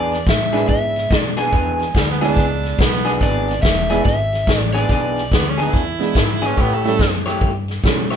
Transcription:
0.00 0.26 E2 medium
0.00 0.16 E3 medium
0.00 0.16 B3 medium
0.00 0.16 D4 medium
0.00 0.16 G#4 medium
0.00 0.29 D5 medium
0.12 snare soft
0.12 closed hi-hat medium
0.27 0.68 A2 medium
0.27 0.68 E5 medium
0.27 kick medium
0.27 snare loud
0.27 closed hi-hat medium
0.52 0.77 E3 medium
0.52 1.07 G#3 medium
0.52 1.07 B3 medium
0.52 0.77 B3 medium
0.52 1.08 D4 medium
0.52 0.77 D4 medium
0.52 1.08 E4 medium
0.52 0.77 G#4 medium
0.52 snare soft
0.52 closed hi-hat medium
0.69 1.10 G#2 medium
0.69 1.18 E5 medium
0.69 kick medium
0.69 closed hi-hat medium
0.96 snare soft
0.96 closed hi-hat medium
1.11 1.52 B2 medium
1.11 kick medium
1.11 snare loud
1.11 closed hi-hat medium
1.18 1.34 D5 medium
1.37 1.50 E3 medium
1.37 1.51 B3 medium
1.37 1.51 D4 medium
1.37 1.52 G#4 medium
1.37 2.18 G#5 medium
1.37 snare soft
1.37 closed hi-hat medium
1.51 1.94 E2 medium
1.51 1.84 E3 medium
1.51 1.84 B3 medium
1.51 1.84 D4 medium
1.51 1.84 G#4 medium
1.51 kick medium
1.51 closed hi-hat medium
1.80 snare soft
1.80 closed hi-hat medium
1.95 2.36 D2 medium
1.95 2.10 G3 medium
1.95 kick medium
1.95 snare loud
1.95 closed hi-hat medium
2.11 2.24 B3 medium
2.21 2.45 E3 medium
2.21 2.76 G#3 medium
2.21 2.76 B3 medium
2.21 2.45 B3 medium
2.21 2.45 D4 medium
2.21 2.76 D4 medium
2.21 2.82 D4 medium
2.21 2.76 E4 medium
2.21 2.45 G#4 medium
2.21 snare soft
2.21 closed hi-hat medium
2.37 2.78 C#2 medium
2.37 kick medium
2.37 snare soft
2.37 closed hi-hat medium
2.63 snare soft
2.63 closed hi-hat medium
2.79 3.20 B1 medium
2.79 3.13 B3 medium
2.79 kick medium
2.79 snare loud
2.79 closed hi-hat medium
3.05 3.20 E3 medium
3.05 3.20 B3 medium
3.05 3.21 D4 medium
3.05 3.21 G#4 medium
3.05 snare soft
3.05 closed hi-hat medium
3.21 3.62 G#1 medium
3.21 3.53 E3 medium
3.21 3.53 B3 medium
3.21 3.53 D4 medium
3.21 3.53 G#4 medium
3.21 3.61 D5 medium
3.21 kick medium
3.21 snare soft
3.21 closed hi-hat medium
3.48 snare soft
3.48 closed hi-hat medium
3.62 4.04 E1 medium
3.62 4.02 E5 medium
3.62 kick medium
3.62 snare loud
3.62 closed hi-hat medium
3.89 4.14 E3 medium
3.89 4.04 G#3 medium
3.89 4.04 B3 medium
3.89 4.14 B3 medium
3.89 4.04 D4 medium
3.89 4.14 D4 medium
3.89 4.04 E4 medium
3.89 4.13 G#4 medium
3.89 snare soft
3.89 closed hi-hat medium
4.05 4.46 G#1 medium
4.05 4.59 E5 medium
4.05 kick medium
4.05 snare soft
4.05 closed hi-hat medium
4.32 snare soft
4.32 closed hi-hat medium
4.47 4.88 A1 medium
4.47 kick medium
4.47 snare loud
4.47 closed hi-hat medium
4.59 4.73 D5 medium
4.73 4.88 E3 medium
4.73 4.89 B3 medium
4.73 4.90 D4 medium
4.73 4.89 G#4 medium
4.73 5.54 D5 medium
4.73 snare soft
4.73 closed hi-hat medium
4.89 5.30 B1 medium
4.89 5.21 E3 medium
4.89 5.21 B3 medium
4.89 5.21 D4 medium
4.89 5.22 G#4 medium
4.89 kick medium
4.89 snare soft
4.89 closed hi-hat medium
5.16 snare soft
5.16 closed hi-hat medium
5.32 5.72 D2 medium
5.32 5.50 B3 medium
5.32 kick medium
5.32 snare loud
5.32 closed hi-hat medium
5.49 5.61 C#4 medium
5.58 5.82 E3 medium
5.58 5.82 B3 medium
5.58 5.82 D4 medium
5.58 5.81 G#4 medium
5.58 snare soft
5.58 closed hi-hat medium
5.62 6.47 E4 medium
5.73 6.14 E2 medium
5.73 kick medium
5.73 snare soft
5.73 closed hi-hat medium
5.99 6.13 G#3 medium
5.99 6.14 B3 medium
5.99 6.14 D4 medium
5.99 6.14 E4 medium
5.99 snare soft
5.99 closed hi-hat medium
6.15 6.56 G#2 medium
6.15 kick medium
6.15 snare loud
6.15 closed hi-hat medium
6.42 6.58 E3 medium
6.42 6.56 B3 medium
6.42 6.56 D4 medium
6.42 6.57 G#4 medium
6.42 snare soft
6.42 closed hi-hat medium
6.46 6.62 C#4 medium
6.57 6.99 A2 medium
6.57 6.89 A3 medium
6.57 6.89 E4 medium
6.57 6.89 G4 medium
6.57 6.89 C#5 medium
6.57 kick medium
6.57 closed hi-hat medium
6.61 6.76 B3 medium
6.74 6.87 A3 medium
6.84 6.98 G3 medium
6.84 6.98 A3 medium
6.84 7.09 A3 medium
6.84 6.99 C#4 medium
6.84 6.99 E4 medium
6.84 snare soft
6.84 closed hi-hat soft
6.99 7.40 F#2 medium
6.99 kick medium
6.99 snare medium
6.99 closed hi-hat medium
7.26 7.50 A3 medium
7.26 7.50 E4 medium
7.26 7.50 G4 medium
7.26 7.49 C#5 medium
7.26 snare soft
7.26 closed hi-hat medium
7.41 7.82 G2 medium
7.41 kick medium
7.41 closed hi-hat medium
7.68 snare soft
7.68 closed hi-hat medium
7.84 8.16 B2 medium
7.84 8.08 G3 medium
7.84 8.08 A3 medium
7.84 8.08 C#4 medium
7.84 8.08 E4 medium
7.84 kick medium
7.84 snare loud
7.84 closed hi-hat medium
8.10 8.16 A3 medium
8.10 8.16 E4 medium
8.10 8.16 G4 medium
8.10 8.16 C#5 medium
8.10 snare soft
8.10 closed hi-hat medium

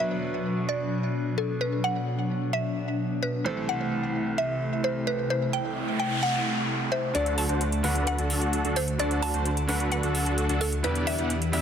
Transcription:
0.00 3.42 B2 medium
0.00 3.42 F#3 medium
0.00 3.43 B3 medium
0.00 3.42 D4 medium
0.00 3.43 D4 medium
0.00 3.43 B4 medium
0.00 0.71 E5 loud
0.69 1.34 D5 medium
1.38 1.62 A4 medium
1.61 1.85 B4 medium
1.84 2.55 F#5 loud
2.53 3.25 E5 medium
3.23 3.46 B4 medium
3.44 7.11 C2 medium
3.44 7.11 C3 medium
3.44 7.12 E3 medium
3.44 7.11 A3 medium
3.44 7.12 A3 medium
3.44 7.12 C4 medium
3.44 7.11 E4 medium
3.44 7.13 A4 medium
3.44 3.67 C5 medium
3.69 4.40 F#5 medium
4.38 4.86 E5 medium
4.84 5.06 C5 medium
5.07 5.29 B4 medium
5.30 5.41 C5 medium
5.30 noise sweep medium
5.53 5.98 G5 loud
6.00 6.21 G5 medium
6.23 6.94 F#5 medium
6.92 7.13 C5 medium
6.92 7.13 E5 medium
7.14 7.47 D2 loud
7.14 7.81 D3 medium
7.14 10.80 D3 medium
7.14 7.81 A3 medium
7.14 10.80 A3 medium
7.14 7.47 D4 loud
7.14 7.81 D4 medium
7.14 7.47 F#4 medium
7.14 10.80 F#4 medium
7.14 7.82 F#4 medium
7.14 7.47 A4 loud
7.14 7.39 D5 loud
7.14 7.82 D5 medium
7.14 closed hi-hat medium
7.26 closed hi-hat soft
7.38 8.09 A5 loud
7.38 open hi-hat loud
7.49 7.82 D2 medium
7.49 7.64 D4 medium
7.49 7.64 F#4 medium
7.49 7.64 C5 medium
7.49 closed hi-hat soft
7.61 closed hi-hat medium
7.72 closed hi-hat soft
7.83 8.16 D2 medium
7.83 8.96 D3 medium
7.83 8.96 A3 medium
7.83 8.16 D4 medium
7.83 8.97 D4 medium
7.83 8.16 F#4 medium
7.83 8.97 F#4 medium
7.83 8.16 B4 medium
7.83 8.97 F#5 medium
7.83 open hi-hat loud
7.95 closed hi-hat soft
8.07 8.79 F#5 loud
8.07 closed hi-hat medium
8.18 8.62 D2 medium
8.18 8.62 D4 medium
8.18 8.62 F#4 medium
8.18 8.62 A4 medium
8.18 closed hi-hat soft
8.30 open hi-hat medium
8.42 closed hi-hat soft
8.53 closed hi-hat medium
8.65 8.97 D2 medium
8.65 8.79 D4 medium
8.65 8.79 F#4 medium
8.65 8.79 A4 loud
8.65 closed hi-hat soft
8.76 9.00 C5 medium
8.76 open hi-hat loud
8.88 closed hi-hat soft
8.98 9.32 D2 loud
8.98 9.65 D3 medium
8.98 9.66 A3 medium
8.98 9.31 D4 loud
8.98 9.66 D4 medium
8.98 9.31 F#4 medium
8.98 9.66 F#4 medium
8.98 9.31 A4 loud
8.98 9.23 D5 loud
8.98 9.66 D5 medium
8.98 closed hi-hat medium
9.11 closed hi-hat soft
9.22 9.94 A5 loud
9.22 open hi-hat loud
9.34 9.66 D2 medium
9.34 9.48 D4 medium
9.34 9.48 F#4 medium
9.34 9.48 C5 medium
9.34 closed hi-hat soft
9.45 closed hi-hat medium
9.57 closed hi-hat soft
9.67 10.01 D2 medium
9.67 10.81 D3 medium
9.67 10.81 A3 medium
9.67 10.00 D4 medium
9.67 10.81 D4 medium
9.67 10.00 F#4 medium
9.67 10.82 F#4 medium
9.67 10.00 B4 loud
9.67 10.82 F#5 medium
9.67 open hi-hat loud
9.80 closed hi-hat soft
9.92 10.57 F#5 loud
9.92 closed hi-hat medium
10.03 10.47 D2 medium
10.03 10.47 D4 medium
10.03 10.47 F#4 medium
10.03 10.47 A4 medium
10.03 closed hi-hat soft
10.15 open hi-hat loud
10.26 closed hi-hat soft
10.38 closed hi-hat medium
10.49 10.82 D2 medium
10.49 10.64 D4 medium
10.49 10.64 F#4 medium
10.49 10.64 A4 medium
10.49 closed hi-hat soft
10.61 10.85 A4 medium
10.61 open hi-hat loud
10.72 closed hi-hat soft
10.83 11.16 E2 loud
10.83 11.62 E3 medium
10.83 11.50 G3 medium
10.83 11.16 B3 loud
10.83 11.50 D4 medium
10.83 11.16 D4 medium
10.83 11.62 D4 medium
10.83 11.16 E4 medium
10.83 11.51 E4 medium
10.83 11.16 G4 medium
10.83 11.62 G4 medium
10.83 11.08 B4 medium
10.83 11.51 B4 medium
10.83 11.16 D5 loud
10.83 closed hi-hat medium
10.95 closed hi-hat soft
11.07 11.62 E5 loud
11.07 open hi-hat loud
11.19 11.51 E2 loud
11.19 11.33 B3 medium
11.19 11.33 D4 medium
11.19 11.33 E4 medium
11.19 11.33 G4 medium
11.19 11.33 F#5 medium
11.19 closed hi-hat soft
11.30 closed hi-hat medium
11.42 closed hi-hat soft
11.52 11.62 E2 medium
11.52 11.62 G3 medium
11.52 11.62 B3 medium
11.52 11.62 D4 medium
11.52 11.62 E4 medium
11.52 11.62 G4 medium
11.52 11.62 E5 loud
11.52 11.62 E5 medium
11.52 open hi-hat loud

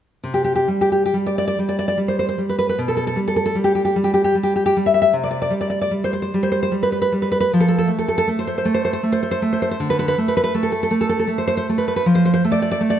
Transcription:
0.24 0.67 C3 soft
0.34 0.43 G4 soft
0.44 0.54 G4 soft
0.55 0.68 G4 soft
0.68 1.13 G3 soft
0.81 0.91 G4 soft
0.92 1.03 G4 soft
1.05 1.16 G4 soft
1.14 1.57 G3 soft
1.26 1.37 D5 soft
1.38 1.46 D5 soft
1.47 1.57 D5 medium
1.59 1.96 G3 soft
1.69 1.78 D5 medium
1.79 1.87 D5 medium
1.88 1.98 D5 medium
1.97 2.37 G3 soft
2.08 2.18 C5 soft
2.19 2.27 C5 soft
2.29 2.39 C5 soft
2.38 2.74 G3 soft
2.49 2.57 B4 soft
2.59 2.68 B4 soft
2.69 2.79 B4 soft
2.79 3.17 B2 soft
2.88 2.95 A4 soft
2.97 3.06 A4 soft
3.07 3.17 A4 medium
3.16 3.54 G3 soft
3.28 3.35 A4 soft
3.36 3.44 A4 soft
3.46 3.56 A4 medium
3.55 3.95 G3 soft
3.64 3.74 G4 soft
3.75 3.84 G4 soft
3.85 3.96 G4 soft
3.96 4.34 G3 soft
4.04 4.12 G4 soft
4.14 4.23 G4 soft
4.24 4.35 G4 soft
4.35 4.75 G3 soft
4.43 4.54 G4 soft
4.56 4.64 G4 soft
4.66 4.76 G4 soft
4.77 5.11 G3 soft
4.86 4.93 E5 soft
4.94 5.00 E5 soft
5.02 5.13 E5 medium
5.13 5.52 C3 soft
5.24 5.30 D5 soft
5.31 5.40 D5 soft
5.42 5.52 D5 medium
5.50 5.90 G3 soft
5.61 5.69 D5 soft
5.70 5.80 D5 soft
5.81 5.92 D5 soft
5.91 6.33 G3 soft
6.04 6.12 C5 medium
6.13 6.21 C5 soft
6.22 6.32 C5 soft
6.34 6.70 G3 soft
6.43 6.50 C5 soft
6.52 6.61 C5 medium
6.63 6.72 C5 medium
6.71 7.11 G3 soft
6.83 6.91 B4 soft
6.92 7.00 B4 soft
7.02 7.12 B4 medium
7.12 7.47 G3 soft
7.22 7.30 B4 soft
7.32 7.39 B4 medium
7.40 7.50 B4 medium
7.53 7.89 F3 soft
7.60 7.67 A4 medium
7.68 7.77 A4 medium
7.78 7.88 A4 medium
7.88 8.26 A3 soft
7.99 8.07 A4 soft
8.08 8.17 A4 medium
8.18 8.27 A4 medium
8.28 8.64 A3 soft
8.39 8.46 C5 soft
8.47 8.56 C5 soft
8.58 8.66 C5 soft
8.65 9.02 A3 soft
8.74 8.84 C5 soft
8.85 8.92 C5 medium
8.93 9.02 C5 medium
9.03 9.41 A3 soft
9.12 9.21 C5 soft
9.23 9.30 C5 medium
9.31 9.40 C5 medium
9.42 9.75 A3 soft
9.53 9.60 C5 medium
9.62 9.70 C5 medium
9.71 9.79 C5 medium
9.80 10.15 D3 medium
9.90 9.98 B4 medium
9.99 10.07 B4 medium
10.08 10.16 B4 medium
10.18 10.53 A3 soft
10.28 10.36 B4 medium
10.37 10.42 B4 medium
10.44 10.53 B4 medium
10.55 10.90 A3 soft
10.63 10.71 A4 soft
10.72 10.81 A4 soft
10.83 10.91 A4 soft
10.91 11.26 A3 soft
11.01 11.08 A4 soft
11.09 11.18 A4 soft
11.19 11.29 A4 medium
11.27 11.68 A3 soft
11.38 11.46 C5 medium
11.47 11.56 C5 medium
11.57 11.66 C5 medium
11.69 12.01 A3 soft
11.78 11.86 B4 soft
11.88 11.95 B4 soft
11.96 12.05 B4 medium
12.06 12.41 F3 medium
12.15 12.23 C5 medium
12.25 12.32 C5 medium
12.34 12.42 C5 medium
12.45 12.79 A3 soft
12.52 12.60 D5 medium
12.62 12.70 D5 medium
12.71 12.80 D5 medium
12.81 12.99 A3 soft
12.90 12.99 D5 medium

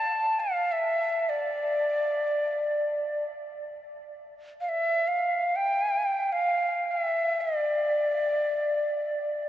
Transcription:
0.00 0.41 A5 medium
0.40 0.73 F5 medium
0.72 1.31 E5 medium
1.29 3.24 D5 medium
4.61 4.70 F5 medium
4.69 5.09 E5 medium
5.08 5.57 F5 medium
5.56 6.34 G5 medium
6.32 6.93 F5 medium
6.91 7.42 E5 medium
7.41 9.49 D5 medium

